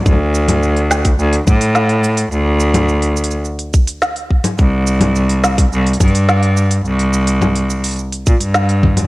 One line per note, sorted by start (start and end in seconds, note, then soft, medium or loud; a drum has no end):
0.06 1.15 D2 loud
0.06 kick loud
0.06 low conga soft
0.06 cabasa soft
0.13 low conga soft
0.35 cabasa medium
0.48 open hi-hat medium
0.48 low conga medium
0.48 cabasa soft
0.63 cabasa soft
0.76 open hi-hat soft
0.91 snare medium
0.91 cabasa medium
1.05 kick loud
1.05 open hi-hat medium
1.05 cabasa soft
1.19 1.42 D2 loud
1.19 cabasa soft
1.33 open hi-hat soft
1.47 2.28 A2 loud
1.47 kick loud
1.47 low conga medium
1.47 cabasa medium
1.61 open hi-hat medium
1.61 cabasa soft
1.75 snare medium
1.75 cabasa soft
1.89 open hi-hat soft
2.04 cabasa medium
2.17 open hi-hat medium
2.17 cabasa soft
2.32 3.41 D2 loud
2.32 cabasa soft
2.60 cabasa medium
2.74 open hi-hat medium
2.74 low conga medium
2.74 cabasa soft
2.89 cabasa soft
3.02 open hi-hat soft
3.17 cabasa medium
3.24 open hi-hat medium
3.31 cabasa soft
3.45 cabasa soft
3.59 open hi-hat soft
3.73 kick loud
3.73 cabasa medium
3.87 open hi-hat medium
3.87 cabasa soft
4.02 snare medium
4.02 cabasa soft
4.16 open hi-hat soft
4.31 kick medium
4.44 open hi-hat medium
4.44 low conga medium
4.44 cabasa soft
4.58 5.68 C2 loud
4.58 kick loud
4.58 cabasa soft
4.87 cabasa medium
5.01 open hi-hat medium
5.01 low conga medium
5.15 cabasa soft
5.29 open hi-hat soft
5.44 snare medium
5.44 cabasa medium
5.58 kick loud
5.58 open hi-hat medium
5.58 cabasa soft
5.72 5.95 C2 loud
5.72 cabasa soft
5.87 open hi-hat soft
5.93 open hi-hat soft
6.00 6.81 G2 loud
6.00 kick loud
6.00 open hi-hat soft
6.00 low conga medium
6.00 cabasa medium
6.08 open hi-hat soft
6.15 open hi-hat medium
6.15 cabasa soft
6.29 snare medium
6.29 cabasa soft
6.43 open hi-hat soft
6.57 cabasa medium
6.71 open hi-hat medium
6.71 cabasa soft
6.85 7.94 C2 loud
6.85 cabasa soft
6.99 open hi-hat soft
7.13 cabasa medium
7.27 open hi-hat medium
7.27 cabasa soft
7.42 low conga medium
7.42 cabasa soft
7.55 open hi-hat soft
7.70 cabasa medium
7.84 open hi-hat medium
7.84 cabasa soft
7.86 open hi-hat soft
7.89 open hi-hat soft
7.91 open hi-hat soft
7.93 open hi-hat soft
7.96 open hi-hat soft
7.96 cabasa soft
8.12 open hi-hat soft
8.26 8.38 A#2 medium
8.26 kick loud
8.26 cabasa medium
8.41 9.07 G2 loud
8.41 open hi-hat medium
8.41 cabasa soft
8.54 snare medium
8.54 cabasa soft
8.69 open hi-hat soft
8.83 kick medium
8.83 low conga medium
8.97 open hi-hat medium
8.97 low conga medium
8.97 cabasa soft
9.00 low conga soft
9.02 low conga soft